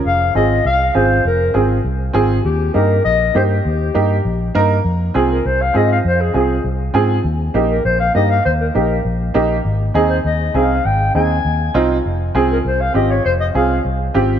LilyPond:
<<
  \new Staff \with { instrumentName = "Clarinet" } { \time 4/4 \key f \minor \tempo 4 = 200 f''4 ees''4 f''4 c''4 | bes'4 r2. | g'4 bes'4 ees''4 c''8 g'8~ | g'2. r4 |
r4. bes'8 c''8 f''8 ees''8 f''8 | c''8 aes'8 aes'4 r2 | r4. bes'8 c''8 f''8 ees''8 f''8 | c''8 bes'8 bes'4 r2 |
r4. c''8 ees''4 f''4 | g''4 aes''2~ aes''8 r8 | r4. bes'8 c''8 f''8 ees''8 des''8 | c''8 ees''8 f''4 r2 | }
  \new Staff \with { instrumentName = "Upright piano" } { \time 4/4 \key f \minor << { r1 | r1 | r1 | r1 |
r1 | r2. aes''4 | r1 | r1 |
r1 | r1 | r1 | r1 | } \\ { r4 <c' f' aes'>8 r4. <c' f' aes'>8 r8 | r4 <c' f' aes'>8 r4. <c' f' aes'>8 r8 | r4 <bes ees' g'>8 r4. <bes ees' g'>8 r8 | r4 <bes ees' g'>8 r4. <bes ees' bes'>8 r8 |
r4 <c' f' aes'>8 r4. <c' f' aes'>8 r8 | r4 <c' f' aes'>8 r4. <c' f' aes'>8 r8 | r4 <bes ees' g'>8 r4. <bes ees' g'>8 r8 | r4 <bes ees' g'>8 r4. <bes ees' g'>8 r8 |
r4 <c' ees' aes'>8 r4. <c' ees' aes'>8 r8 | r4 <c' ees' aes'>8 r4. <c' ees' f'>8 r8 | r4 <c' f' aes'>8 r4. <c' f' g'>8 r8 | r4 <c' f' aes'>8 r4. <c' f' g'>8 r8 | } >> }
  \new Staff \with { instrumentName = "Fingered electric bass" } { \clef bass \time 4/4 \key f \minor f,,4 aes,,4 c,4 aes,,4 | f,,4 aes,,4 c,4 aes,,4 | ees,4 g,4 bes,,4 g,4 | ees,4 g,4 bes,,4 g,4 |
f,4 c,4 c,4 aes,4 | f,4 c,4 c,4 aes,4 | ees,4 bes,,4 bes,,4 g,4 | ees,4 bes,,4 bes,,4 bes,,4 |
aes,,4 ees,4 ees,4 c,4 | aes,,4 ees,4 ees,4 c,4 | f,,4 c,4 c,4 aes,,4 | f,,4 c,4 c,4 aes,,4 | }
>>